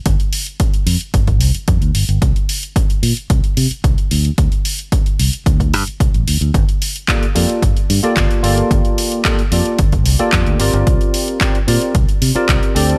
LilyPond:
<<
  \new Staff \with { instrumentName = "Tine electric piano" } { \time 4/4 \key g \minor \tempo 4 = 111 r1 | r1 | r1 | r4 <bes f' g' a' d''>16 r16 <bes f' g' a' d''>8 r8. <bes f' g' a' d''>8. <bes f' g' a' d''>8~ |
<bes f' g' a' d''>4 <bes f' g' a' d''>16 r16 <bes f' g' a' d''>8 r8. <bes f' g' a' d''>8. <c' f' g' bes' d''>8~ | <c' f' g' bes' d''>4 <c' f' g' bes' d''>16 r16 <c' f' g' bes' d''>8 r8. <c' f' g' bes' d''>8. <c' d' g' a' d''>8 | }
  \new Staff \with { instrumentName = "Fingered electric bass" } { \clef bass \time 4/4 \key g \minor g,,16 r4 r16 f,16 r16 g,,8 c,16 r16 f,16 d,16 g,,16 g,,16 | c,16 r4 r16 bes,16 r16 c,16 r16 c16 r16 c,16 r16 d,16 r16 | d,16 r4 r16 c,16 r16 d,8 g,16 r16 c,16 a,,16 d,16 d,16 | g,,16 r4 r16 f,16 r16 g,,16 r16 g,16 r16 g,,16 r16 g,,16 r16 |
g,,16 r4 r16 f,16 r16 g,,8 c,16 r16 f,16 d,16 g,,16 g,,16 | c,16 r4 r16 bes,16 r16 c,16 r16 c16 r16 c,16 r16 d,16 r16 | }
  \new DrumStaff \with { instrumentName = "Drums" } \drummode { \time 4/4 <hh bd>16 hh16 hho16 hh16 <hh bd>16 hh16 hho16 hh16 <hh bd>16 <hh bd>16 hho16 hh16 <hh bd>16 hh16 hho16 hh16 | <hh bd>16 hh16 hho16 hh16 <hh bd>16 hh16 hho16 hh16 <hh bd>16 hh16 hho16 hh16 <hh bd>16 hh16 hho16 hh16 | <hh bd>16 hh16 hho16 hh16 <hh bd>16 hh16 hho16 hh16 <hh bd>16 <hh bd>16 hho16 hh16 <hh bd>16 hh16 hho16 hh16 | <hh bd>16 hh16 hho16 hh16 <hc hh bd>16 hh16 hho16 hh16 <hh bd>16 hh16 hho16 hh16 <hc hh bd>16 hh16 hho16 hh16 |
<hh bd>16 hh16 hho16 hh16 <hc hh bd>16 hh16 hho16 hh16 <hh bd>16 <hh bd>16 hho16 hh16 <hc hh bd>16 hh16 hho16 hh16 | <hh bd>16 hh16 hho16 hh16 <hc hh bd>16 hh16 hho16 hh16 <hh bd>16 hh16 hho16 hh16 <hc hh bd>16 hh16 hho16 hh16 | }
>>